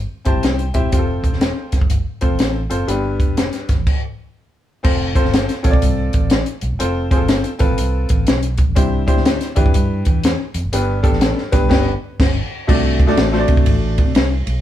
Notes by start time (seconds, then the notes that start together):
0.25 G1 C4 E4 G4 C5 A5, kick, closed hi-hat
0.35 C2
0.43 C2 G5, snare, closed hi-hat
0.59 closed hi-hat
0.74 E1 C4 E4 G4 C5 E5, kick, closed hi-hat
0.91 F1 C4 F4 G4 C5, kick, closed hi-hat
0.99 A4
1.23 E1, kick, closed hi-hat
1.33 snare
1.41 snare, closed hi-hat
1.72 F1, kick, snare, closed hi-hat
1.81 G1, kick
1.90 kick, closed hi-hat
2.21 F1 C4 F4 A4 C5, kick, closed hi-hat
2.32 A1
2.39 A1, snare, closed hi-hat
2.70 F#1 C4 F4 A4 C5, closed hi-hat
2.87 G1 G2 B3 D4 G4 B4, closed hi-hat
3.20 F1, kick, closed hi-hat
3.37 snare, closed hi-hat
3.53 snare, closed hi-hat
3.69 G1, kick, snare, closed hi-hat
3.78 A1
3.87 kick, crash
4.83 F1 C4 F4 A4 C5, kick, crash
5.15 C4 F4 A4 C5, kick, closed hi-hat
5.25 G1, snare
5.34 snare, closed hi-hat
5.49 snare, closed hi-hat
5.63 A1 C4 F4 A4 C#5, kick, snare, closed hi-hat
5.71 B1 D5, kick
5.82 C2, kick, closed hi-hat
6.13 A1, kick, closed hi-hat
6.30 snare, closed hi-hat
6.46 closed hi-hat
6.61 B1, closed hi-hat
6.72 E1
6.79 F1 C4 F4 A4 C5, closed hi-hat
7.11 C4 F4 G#4 C5, kick, closed hi-hat
7.17 A4
7.21 G1
7.28 snare, closed hi-hat
7.44 closed hi-hat
7.59 A1 C4 F4 A4 B4, kick, closed hi-hat
7.71 B1
7.78 C2, closed hi-hat
8.09 A1, kick, closed hi-hat
8.27 B1, snare, closed hi-hat
8.43 closed hi-hat
8.58 kick, closed hi-hat
8.69 A1
8.75 C2 C3 D4 E4 G4 C5, kick, closed hi-hat
9.07 D4 E4 G4 C5, kick, closed hi-hat
9.16 D2, snare
9.26 snare, closed hi-hat
9.41 snare, closed hi-hat
9.56 E2 D4 E4 G4 B4, kick, closed hi-hat
9.66 F2, kick
9.74 G2, kick, closed hi-hat
10.05 E2, kick, closed hi-hat
10.24 snare, closed hi-hat
10.54 F2, closed hi-hat
10.64 F#1
10.72 G1 G2 B3 D4 G4 B4, closed hi-hat
11.02 B3 D4 G4 A4, kick, closed hi-hat
11.11 A1, snare
11.21 snare, closed hi-hat
11.38 snare
11.52 B1 B3 D4 G4 B4, kick, snare, closed hi-hat
11.61 C2
11.69 G1 B3 D4 G4 B4, kick, snare, crash
12.19 G1, kick, snare, crash
12.67 C2 C3 A3 D4 F#4 A4 D5, kick, crash
13.00 kick, ride
13.07 A3 D4 F#4 A4 D5, snare
13.17 A1, snare, ride
13.32 A3 D4 F#4 A4 C5, snare
13.39 D5
13.48 C3, kick, ride
13.57 kick
13.66 A1, kick, ride
13.98 C3, kick, ride
14.15 C2, snare, ride
14.47 B1, ride